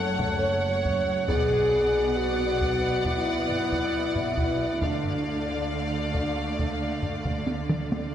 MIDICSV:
0, 0, Header, 1, 8, 480
1, 0, Start_track
1, 0, Tempo, 882353
1, 702, Time_signature, 4, 2, 24, 8
1, 4433, End_track
2, 0, Start_track
2, 0, Title_t, "Violin section"
2, 0, Program_c, 0, 48
2, 0, Note_on_c, 0, 78, 78
2, 678, Note_off_c, 0, 78, 0
2, 701, Note_on_c, 0, 78, 69
2, 2599, Note_off_c, 0, 78, 0
2, 2619, Note_on_c, 0, 77, 53
2, 4410, Note_off_c, 0, 77, 0
2, 4433, End_track
3, 0, Start_track
3, 0, Title_t, "Violin section"
3, 0, Program_c, 1, 48
3, 0, Note_on_c, 1, 73, 64
3, 680, Note_off_c, 1, 73, 0
3, 702, Note_on_c, 1, 74, 59
3, 2600, Note_off_c, 1, 74, 0
3, 2629, Note_on_c, 1, 74, 49
3, 4415, Note_off_c, 1, 74, 0
3, 4433, End_track
4, 0, Start_track
4, 0, Title_t, "French horn section"
4, 0, Program_c, 2, 60
4, 0, Note_on_c, 2, 69, 90
4, 215, Note_off_c, 2, 69, 0
4, 217, Note_on_c, 2, 73, 96
4, 698, Note_on_c, 2, 68, 101
4, 700, Note_off_c, 2, 73, 0
4, 1170, Note_off_c, 2, 68, 0
4, 1182, Note_on_c, 2, 66, 73
4, 1662, Note_off_c, 2, 66, 0
4, 1670, Note_on_c, 2, 64, 85
4, 2626, Note_off_c, 2, 64, 0
4, 2631, Note_on_c, 2, 62, 70
4, 4067, Note_off_c, 2, 62, 0
4, 4433, End_track
5, 0, Start_track
5, 0, Title_t, "Viola section"
5, 0, Program_c, 3, 48
5, 0, Note_on_c, 3, 57, 67
5, 677, Note_off_c, 3, 57, 0
5, 701, Note_on_c, 3, 59, 59
5, 2599, Note_off_c, 3, 59, 0
5, 2621, Note_on_c, 3, 57, 52
5, 4411, Note_off_c, 3, 57, 0
5, 4433, End_track
6, 0, Start_track
6, 0, Title_t, "Cello section"
6, 0, Program_c, 4, 48
6, 0, Note_on_c, 4, 42, 65
6, 680, Note_off_c, 4, 42, 0
6, 707, Note_on_c, 4, 47, 57
6, 2602, Note_off_c, 4, 47, 0
6, 2631, Note_on_c, 4, 50, 50
6, 4416, Note_off_c, 4, 50, 0
6, 4433, End_track
7, 0, Start_track
7, 0, Title_t, "Double bass section"
7, 0, Program_c, 5, 48
7, 0, Note_on_c, 5, 30, 71
7, 681, Note_off_c, 5, 30, 0
7, 704, Note_on_c, 5, 35, 61
7, 2601, Note_off_c, 5, 35, 0
7, 2626, Note_on_c, 5, 38, 47
7, 4413, Note_off_c, 5, 38, 0
7, 4433, End_track
8, 0, Start_track
8, 0, Title_t, "Taiko and cinematic ensemble drums"
8, 101, Note_on_c, 9, 41, 77
8, 155, Note_off_c, 9, 41, 0
8, 464, Note_on_c, 9, 41, 71
8, 518, Note_off_c, 9, 41, 0
8, 703, Note_on_c, 9, 41, 95
8, 757, Note_off_c, 9, 41, 0
8, 820, Note_on_c, 9, 43, 42
8, 875, Note_off_c, 9, 43, 0
8, 1418, Note_on_c, 9, 41, 70
8, 1473, Note_off_c, 9, 41, 0
8, 1662, Note_on_c, 9, 41, 74
8, 1716, Note_off_c, 9, 41, 0
8, 1901, Note_on_c, 9, 43, 50
8, 1955, Note_off_c, 9, 43, 0
8, 2025, Note_on_c, 9, 41, 76
8, 2079, Note_off_c, 9, 41, 0
8, 2261, Note_on_c, 9, 43, 47
8, 2315, Note_off_c, 9, 43, 0
8, 2380, Note_on_c, 9, 41, 66
8, 2435, Note_off_c, 9, 41, 0
8, 2621, Note_on_c, 9, 41, 88
8, 2676, Note_off_c, 9, 41, 0
8, 2742, Note_on_c, 9, 43, 45
8, 2796, Note_off_c, 9, 43, 0
8, 3343, Note_on_c, 9, 41, 71
8, 3397, Note_off_c, 9, 41, 0
8, 3587, Note_on_c, 9, 41, 71
8, 3641, Note_off_c, 9, 41, 0
8, 3821, Note_on_c, 9, 43, 52
8, 3876, Note_off_c, 9, 43, 0
8, 3945, Note_on_c, 9, 41, 71
8, 3999, Note_off_c, 9, 41, 0
8, 4063, Note_on_c, 9, 48, 72
8, 4117, Note_off_c, 9, 48, 0
8, 4186, Note_on_c, 9, 47, 88
8, 4240, Note_off_c, 9, 47, 0
8, 4308, Note_on_c, 9, 48, 81
8, 4363, Note_off_c, 9, 48, 0
8, 4433, End_track
0, 0, End_of_file